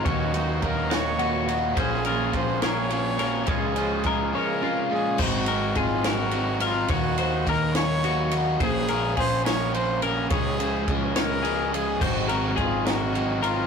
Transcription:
<<
  \new Staff \with { instrumentName = "Clean electric guitar" } { \time 6/8 \key aes \mixolydian \tempo 4. = 70 des''8 c''8 bes'8 des''8 ges'4 | c''8 bes'8 aes'8 bes'4 bes'8 | des''8 c''8 bes'8 des''8 f'4 | c''8 bes'8 aes'8 bes'4 bes'8 |
des''8 c''8 bes'8 des''8 ges'4 | c''8 bes'8 aes'8 bes'4 bes'8 | des''8 c''8 bes'8 des''8 aes'4 | c''8 bes'8 aes'8 bes'4 bes'8 | }
  \new Staff \with { instrumentName = "Trumpet" } { \time 6/8 \key aes \mixolydian ges'4 bes'8 des''4 r8 | aes'4 c''8 des''4. | aes'4. bes'4 aes'8 | ges'4 f'8 ges'4 f'8 |
ges'4 bes'8 des''4 r8 | aes'4 c''8 des''8 c''8 bes'8 | aes'4 r8 bes'4 aes'8 | ges'4 f'8 ges'4 f'8 | }
  \new Staff \with { instrumentName = "Clean electric guitar" } { \clef bass \time 6/8 \key aes \mixolydian << { des'8 ees'4 ges'4. | des'8 f'4 aes'4. | <aes bes f'>8 f'2~ f'8 | r2. |
r2. | r2. | r2. | r2. | } \\ { ees4 ges4 bes,4 | bes,4 bes4 f4 | des4 aes8 des8 c8 bes,8 | r2. |
r2. | r2. | r2. | r2. | } >> }
  \new Staff \with { instrumentName = "Overdriven electric guitar" } { \clef bass \time 6/8 \key aes \mixolydian <ees ges bes ees'>8 <ges bes ees'>8 <ees ges bes ees'>8 <ges bes ees'>8 <ees ges bes ees'>8 <ges bes ees'>8 | <bes, f bes des'>8 <f bes des'>8 <bes, f bes des'>8 <f bes des'>8 <bes, f bes des'>8 <f bes des'>8 | <des f aes des'>8 <f aes des'>8 <des f aes des'>8 <f aes des'>8 <des f aes des'>8 <f aes des'>8 | <aes, ees ges c' ees'>8 <ges c' ees'>8 <ees ges c' ees'>8 <ges c' ees'>8 <ees ges c' ees'>8 <ges c' ees'>8 |
<ees ges bes ees'>8 <ges bes ees'>8 <ees ges bes ees'>8 <ges bes ees'>8 <ees ges bes ees'>8 <ges bes ees'>8 | <bes, f bes des'>8 <f bes des'>8 <bes, f bes des'>8 <f bes des'>8 <bes, f bes des'>8 <f bes des'>8 | <des f aes des'>8 <f aes des'>8 <des f aes des'>8 <f aes des'>8 <des f aes des'>8 <f aes des'>8 | <aes, ees ges c' ees'>8 <ges c' ees'>8 <ees ges c' ees'>8 <ges c' ees'>8 <ees ges c' ees'>8 <ges c' ees'>8 | }
  \new Staff \with { instrumentName = "Picked electric bass" } { \clef bass \time 6/8 \key aes \mixolydian ees,4 ees,2 | bes,,4 bes,,2 | des,4 des,8 r4. | aes,,4 aes,,2 |
ees,4 ees,2 | bes,,4 bes,,2 | des,4 des,2 | aes,,4 aes,,2 | }
  \new DrumStaff \with { instrumentName = "Drums" } \drummode { \time 6/8 <bd cymr>8 cymr8 <bd cymr>8 <cymr sn>8 cymr8 cymr8 | <bd cymr>8 cymr8 <bd cymr>8 <cymr sn>8 cymr8 cymr8 | <bd cymr>8 cymr8 <bd cymr>8 r4. | <cymc bd>8 cymr8 <bd cymr>8 <cymr sn>8 cymr8 cymr8 |
<bd cymr>8 cymr8 <bd cymr>8 <cymr sn>8 cymr8 cymr8 | <bd cymr>8 cymr8 <bd cymr>8 <cymr sn>8 cymr8 cymr8 | <bd cymr>8 cymr8 <bd cymr>8 <cymr sn>8 cymr8 cymr8 | <cymc bd>8 cymr8 <bd cymr>8 <cymr sn>8 cymr8 cymr8 | }
>>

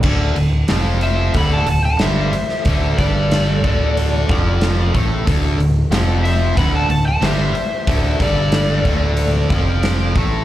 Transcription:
<<
  \new Staff \with { instrumentName = "Electric slide guitar" } { \time 4/4 \key c \lydian \tempo 4 = 92 r4. e''8 b''16 a''16 a''16 a''16 e''4~ | e''8 d''2. r8 | r4. e''8 b''16 a''16 a''16 a''16 e''4~ | e''8 d''2. r8 | }
  \new Staff \with { instrumentName = "Lead electric guitar" } { \time 4/4 \key c \lydian r4. c''8 fis''16 fis''16 fis''16 fis''16 c''4~ | c''8 a'2. r8 | r4. c''8 fis''16 fis''16 fis''16 fis''16 c''4~ | c''8 a'2. r8 | }
  \new Staff \with { instrumentName = "Distorted electric guitar" } { \clef bass \time 4/4 \key c \lydian <d, d>8 d,8 <f, f>4 <d, d>8 d,8 <g, g>8 r8 | <d, d>8 <g, g>4 <d, d>4 <f, f>4 <a, a>8 | <d, d>8 d,8 <f, f>4 <d, d>8 d,8 <g, g>8 r8 | <d, d>8 <g, g>4 <d, d>4 <f, f>4 <a, a>8 | }
  \new Staff \with { instrumentName = "Fingered electric bass" } { \clef bass \time 4/4 \key c \lydian d,,8 d,,8 f,,4 d,,8 d,,8 g,,8 r8 | d,,8 g,,4 d,,4 f,,4 a,,8 | d,,8 d,,8 f,,4 d,,8 d,,8 g,,8 r8 | d,,8 g,,4 d,,4 f,,4 a,,8 | }
  \new DrumStaff \with { instrumentName = "Drums" } \drummode { \time 4/4 <cymc bd>8 hho8 <hho sn>8 hho8 <hho bd>8 hho8 <hho sn>8 hho16 sn16 | <hho bd>8 <hho bd>8 <hho sn>8 <hho bd>8 hho8 <hho bd>8 <hho sn>8 <hho bd>8 | <hho bd>8 hho8 <hho sn>8 hho8 <hho bd>8 hho8 <hho sn>8 hho8 | <hho bd>8 <hho bd>8 <hho sn>8 <hho bd>8 hho8 <hho bd>8 <hho sn>8 <hho bd>8 | }
>>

